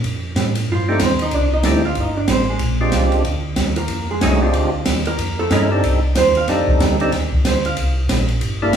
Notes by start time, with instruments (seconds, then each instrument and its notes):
0.03 tonewheel organ F2, ride
0.35 tonewheel organ A2, snare, hi-hat pedal, ride
0.55 ride
0.68 tonewheel organ G2, hollow-body jazz guitar F4
0.72 hollow-body jazz guitar F3
0.88 tonewheel organ A3 C4 D4 D#4 G4, hollow-body jazz guitar A3 A4
0.99 tonewheel organ D#2, hollow-body jazz guitar C4 C5, snare, hi-hat pedal, ride
1.19 hollow-body jazz guitar D#4 D#5, ride
1.31 tonewheel organ C2, hollow-body jazz guitar D4 D5, ride
1.53 hollow-body jazz guitar D#4 D#5
1.63 tonewheel organ D2 A3 C4 D4 D#4 G4, hollow-body jazz guitar E4 E5, snare, hi-hat pedal, ride
1.85 hollow-body jazz guitar F4 F5
1.95 tonewheel organ G1, ride
2.00 hollow-body jazz guitar D#4 D#5
2.17 hollow-body jazz guitar D4 D5
2.27 tonewheel organ A1, hollow-body jazz guitar C4 C5, snare, hi-hat pedal, ride
2.49 hollow-body jazz guitar G#3 G#4
2.59 tonewheel organ A#1, ride
2.81 tonewheel organ G#3 C4 D4 F4 G4
2.91 tonewheel organ C2, snare, hi-hat pedal, ride
3.12 ride
3.23 tonewheel organ D2, ride
3.56 tonewheel organ D#2, snare, hi-hat pedal, ride
3.76 hollow-body jazz guitar A#3 A#4, ride
3.88 tonewheel organ F2, ride
4.11 hollow-body jazz guitar G#3 G#4
4.21 tonewheel organ C2 A3 C#4 D#4 F#4 G#4, snare, hi-hat pedal, ride
4.41 tonewheel organ G#3 C4 D4 F4 G4
4.53 tonewheel organ D2, ride
4.85 tonewheel organ D#2, snare, hi-hat pedal, ride
5.05 hollow-body jazz guitar A#3 A#4, ride
5.18 tonewheel organ F2, ride
5.39 hollow-body jazz guitar A3 A4
5.51 tonewheel organ G2 G#3 C#4 D#4 E4 A#4, snare, hi-hat pedal, ride
5.71 tonewheel organ G3 C4 D4 D#4 A4
5.83 tonewheel organ C2, ride
6.15 tonewheel organ D#2, hollow-body jazz guitar C5, snare, hi-hat pedal, ride
6.35 hollow-body jazz guitar F5, ride
6.48 tonewheel organ F2 G3 C4 D4 D#4 A4, snare, ride
6.68 kick
6.80 tonewheel organ D2, snare, hi-hat pedal, ride
7.00 tonewheel organ G3 C4 D4 D#4 A4, ride
7.12 tonewheel organ D#2, snare, ride
7.32 tonewheel organ D#2, kick
7.45 tonewheel organ D2, hollow-body jazz guitar C5, snare, hi-hat pedal, ride
7.65 hollow-body jazz guitar F5, ride
7.76 tonewheel organ C2, ride
8.08 tonewheel organ A#1, snare, hi-hat pedal, ride
8.28 ride
8.41 tonewheel organ G1, ride
8.62 tonewheel organ G3 A#3 D4 E4 A4
8.73 tonewheel organ A1, snare, hi-hat pedal, ride